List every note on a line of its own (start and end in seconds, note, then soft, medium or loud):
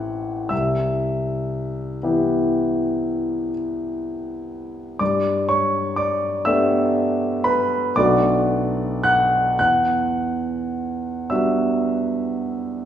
0.00 0.47 A1 soft
0.00 0.47 E3 soft
0.00 0.48 C4 soft
0.00 0.48 E4 soft
0.00 0.48 A4 soft
0.00 0.48 F#5 medium
0.00 0.51 F#6 medium
0.49 1.98 C2 soft
0.49 3.48 E5 soft
0.49 3.52 E6 medium
2.03 4.97 E3 soft
2.03 4.97 B3 soft
2.03 4.97 E4 soft
2.03 4.97 G4 soft
4.99 6.41 G2 soft
4.99 5.45 D5 soft
4.99 5.48 D6 medium
5.49 5.93 C#5 soft
5.49 5.96 C#6 medium
5.96 6.42 D5 soft
5.96 6.45 D6 medium
6.45 7.91 A3 soft
6.45 7.91 B3 soft
6.45 7.92 D4 soft
6.45 7.92 G4 soft
6.45 7.41 E5 medium
6.45 7.44 E6 medium
7.44 7.91 B4 medium
7.44 7.95 B5 medium
7.96 9.55 B1 soft
7.96 9.55 A3 soft
7.96 9.55 B3 soft
7.96 9.55 D4 soft
7.96 9.56 F#4 soft
7.96 8.99 D5 medium
7.96 9.03 D6 medium
9.03 9.55 F#5 medium
9.03 9.58 F#6 medium
9.59 11.26 E2 soft
9.59 11.27 F#5 medium
9.59 11.30 F#6 medium
11.30 12.85 G3 soft
11.30 12.85 B3 soft
11.30 12.85 D4 soft
11.30 12.85 F#4 soft
11.30 12.85 E5 soft
11.30 12.85 E6 soft